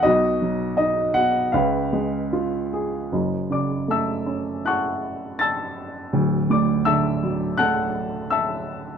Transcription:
<<
  \new Staff \with { instrumentName = "Upright piano" } { \time 4/4 \key cis \minor \tempo 4 = 80 << { dis''4 dis''8 fis''8 eis''4 r4 | \key fis \minor r8 d'''8 e'''4 fis'''4 a'''8. r16 | r8 d'''8 e'''4 fis'''4 e'''8. r16 | } \\ { fis'2 b'2 | r8 d''8 <e'' a''>4 <fis'' a'' cis'''>4 <a'' e'''>8. r16 | r8 d''8 <e'' a''>4 <fis'' a''>4 <e'' a''>8. r16 | } >> }
  \new Staff \with { instrumentName = "Upright piano" } { \clef bass \time 4/4 \key cis \minor <b,, b,>8 fis8 dis'8 b,8 <cis, cis>8 gis8 eis'8 gis'8 | \key fis \minor <fis,, fis,>8 cis8 a8 cis'8 e'2 | <d,, d,>8 a,8 d8 fis8 a2 | }
>>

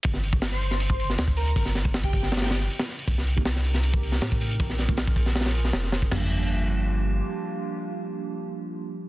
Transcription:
<<
  \new Staff \with { instrumentName = "Digital synth lead" } { \time 4/4 \key g \minor \tempo 4 = 158 r4 r16 c''8 r8 c''8 r8. bes'8 | r4 r16 g'8 r8 g'16 g'16 r4 r16 | r1 | r1 |
r1 | r1 | }
  \new Staff \with { instrumentName = "Ambient pad" } { \time 4/4 \key g \minor << { r1 | r1 | bes'1~ | bes'1 |
<bes d' f' g'>1~ | <bes d' f' g'>1 | } \\ { r1 | r1 | <c' ees' g'>1 | <des' f' aes'>1 |
r1 | r1 | } >> }
  \new Staff \with { instrumentName = "Tine electric piano" } { \time 4/4 \key g \minor r1 | r1 | r8. <bes c' ees' g'>16 r2. | r8. <aes bes des' f'>16 r2. |
<f g bes d'>1~ | <f g bes d'>1 | }
  \new Staff \with { instrumentName = "Sub bass" } { \clef bass \time 4/4 \key g \minor g,,2. d,4 | g,,2. r4 | c,2. a,4 | bes,,2. f,,4 |
g,,2. r4 | r1 | }
  \new DrumStaff \with { instrumentName = "Drums" } \drummode { \time 4/4 <hho bd>16 sn16 hho16 bd16 <hho sn>16 sn16 hho16 sn16 hho16 bd16 hho16 sn16 <hho sn>16 bd16 hho16 hh16 | <hho bd>16 sn16 <hho sn>16 bd16 <hho sn>16 bd16 <hho bd>16 sn16 <hho sn>32 <hho sn>32 <hho sn>32 <hho sn>32 <hho sn>16 sn16 hho16 <hho sn>16 sn16 hho16 | <hho bd>16 sn16 hho16 bd16 <hho sn>16 sn16 hho16 sn16 hho16 bd16 hho16 sn16 <hho sn>16 bd16 hho16 hh16 | <hho bd>16 sn16 <hho sn>16 bd16 <hho sn>16 bd16 <hho bd>16 sn16 <hho sn>32 <hho sn>32 <hho sn>16 hho16 sn16 <hho sn>16 sn16 <hho sn>16 bd16 |
<cymc sn tomfh>4 r4 r4 r4 | r4 r4 r4 r4 | }
>>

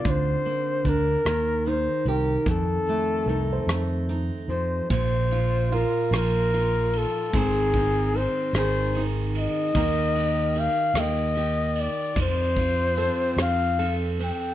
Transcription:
<<
  \new Staff \with { instrumentName = "Flugelhorn" } { \time 6/8 \key bes \major \tempo 4. = 50 c''4 bes'4 c''8 bes'8 | a'2 r8 c''8 | c''4 bes'8 bes'4 a'8 | aes'4 c''8 c''8 r8 ees''8~ |
ees''4 f''8 ees''4 d''8 | c''4. f''8 r8 g''8 | }
  \new Staff \with { instrumentName = "Felt piano" } { \time 6/8 \key bes \major f'8 r2 r8 | r4 a'16 c''4 r8. | r4 f'4 r4 | r2. |
bes'4 r2 | r4 a'4 r4 | }
  \new Staff \with { instrumentName = "Steel-string acoustic guitar" } { \time 6/8 \key bes \major << { r8 bes8 d'8 r8 ees'8 g'8 | r8 a8 ees'8 ees'8 ees'4 | r8 f'8 f'8 f'8 f'4 | <ees c' ees'>8 ees'8 ees'8 aes'8 ees'4 |
<bes ees' g'>8 g'8 g'8 g'8 g'4 | r8 f'8 c'4 a'8 c'8 | } \\ { d4. ees4. | f,2~ f,8 f8 | bes,4. f4. | aes,4. ees4. |
ees4. bes4. | f,4. f,4. | } >> }
  \new Staff \with { instrumentName = "Fretless electric bass" } { \clef bass \time 6/8 \key bes \major d,8 r8 d,8 ees,4 c,8 | f,8 r8 c,8 f,4 f,8 | bes,,4. bes,,4. | aes,,4. aes,,4. |
ees,4. ees,4. | f,4. f,4. | }
  \new DrumStaff \with { instrumentName = "Drums" } \drummode { \time 6/8 <hh bd>8 hh8 <hh bd>8 <hh ss>8 hh8 hh8 | <hh bd>8 hh8 hh8 <hh ss>8 hh8 hh8 | <bd cymr>8 cymr8 cymr8 <cymr ss>8 cymr8 cymr8 | <bd cymr>8 <bd cymr>8 cymr8 <cymr ss>8 cymr8 cymr8 |
<bd cymr>8 cymr8 cymr8 <cymr ss>8 cymr8 cymr8 | <bd cymr>8 <bd cymr>8 cymr8 <cymr ss>8 cymr8 cymr8 | }
>>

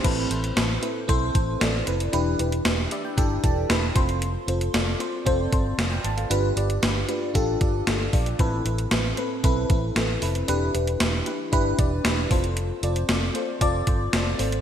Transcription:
<<
  \new Staff \with { instrumentName = "FM electric piano" } { \time 4/4 \key a \minor \tempo 4 = 115 << { r1 | r4. e''16 g''16 g''8 a''8 b''8 c'''8 | r2. <a' f''>16 <b' g''>16 <c'' a''>16 <a' f''>16~ | <a' f''>16 r2. r8. |
r1 | r1 | r1 | } \\ { <c' e' a' b'>8 <c' e' a' c''>8 <c' e' a' b'>8 <c' e' a' b'>8 <c' e' a' c''>8 <c' e' a' c''>8 <c' e' a' d''>8 <c' e' a' b'>8 | <d' e' g' b'>8 <d' e' g' b'>8 <d' e' g' b'>8 <d' e' g' d''>8 <d' e' g' a'>8 <d' e' g' a'>8 <d' e' g' b'>8 <c' f' a' c''>8~ | <c' f' a' c''>8 <c' f' a' c''>8 <c' f' a' d''>8 <c' f' a' c''>8 <c' f' a' c''>8 <c' f' a' c''>8 r4 | <d' f' g' b'>8 <d' f' g' d''>8 <d' f' g' b'>8 <d' f' g' b'>8 <d' f' g' a'>8 <d' f' g' d''>8 <d' f' g' a'>8 <d' f' g' d''>8 |
<c' e' a' b'>8 <c' e' a' b'>8 <c' e' a' b'>8 <c' e' a' b'>8 <c' e' a' b'>8 <c' e' a' b'>8 <c' e' a' b'>8 <c' e' a' b'>8 | <d' e' g' b'>8 <d' e' g' b'>8 <d' e' g' b'>8 <d' e' g' b'>8 <d' e' g' b'>8 <d' e' g' d''>8 <d' e' g' b'>8 <c' f' a' c''>8~ | <c' f' a' c''>8 <c' f' a' d''>8 <c' f' a' d''>8 <c' f' a' c''>8 <c' f' a' d''>8 <c' f' a' c''>8 <c' f' a' c''>8 <c' f' a' c''>8 | } >> }
  \new Staff \with { instrumentName = "FM electric piano" } { \clef bass \time 4/4 \key a \minor a,4. r2 r8 | e4. r2 r8 | r1 | g,4. r2 r8 |
a,4. r2 r8 | e4. r2 r8 | r1 | }
  \new Staff \with { instrumentName = "Fingered electric bass" } { \clef bass \time 4/4 \key a \minor a,,8 a,,8 a,,8 r8 b,,8 a,,8 a,,8 f,,8 | e,,8 e,,8 e,,8 r8 g,,8 e,,8 e,,8 f,,8~ | f,,8 f,,8 f,,8 r8 f,,8 g,,8 f,,8 gis,,8 | g,,8 g,,8 g,,8 r8 a,,8 g,,8 g,,8 bes,,8 |
a,,8 a,,8 a,,8 r8 b,,8 a,,8 a,,8 f,,8 | e,,8 e,,8 e,,8 r8 g,,8 e,,8 e,,8 f,,8~ | f,,8 f,,8 f,,8 r8 f,,8 g,,8 f,,8 gis,,8 | }
  \new DrumStaff \with { instrumentName = "Drums" } \drummode { \time 4/4 <cymc hh bd>8 hh16 hh16 <hh sn>8 hh8 <hh bd>8 <hh bd>8 <hh sn>8 hh16 hh16 | hh8 hh16 hh16 <hh sn>8 hh8 <hh bd>8 <hh bd>8 <hh sn>8 <hh bd>16 hh16 | hh8 hh16 hh16 <hh sn>8 hh8 <hh bd>8 <hh bd>8 <hh sn>8 hh16 hh16 | hh8 hh16 hh16 <hh sn>8 hh8 <hh bd>8 <hh bd>8 <hh sn>8 <hho bd>16 hh16 |
<hh bd>8 hh16 hh16 <hh sn>8 hh8 <hh bd>8 <hh bd>8 <hh sn>8 hho16 hh16 | hh8 hh16 hh16 <hh sn>8 hh8 <hh bd>8 <hh bd>8 <hh sn>8 <hho bd>16 hh16 | hh8 hh16 hh16 <hh sn>8 hh8 <hh bd>8 <hh bd>8 <hh sn>8 hho16 hh16 | }
>>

